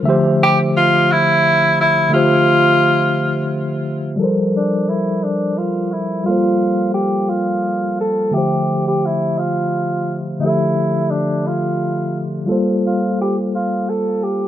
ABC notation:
X:1
M:6/8
L:1/16
Q:3/8=58
K:Gdor
V:1 name="Tenor saxophone"
z2 G2 F2 E4 E2 | F8 z4 | z2 D2 E2 D2 F2 E2 | F4 G2 F4 A2 |
G3 G E2 F4 z2 | E4 D2 F4 z2 | z2 F2 G2 F2 A2 G2 |]
V:2 name="Tine electric piano"
[D,F,A,Gce]12 | [D,A,FGce]12 | [F,G,ABc]12 | [G,B,FAc]12 |
[D,F,A,Gce]12 | [D,F,A,GAe]12 | [G,B,FAc]12 |]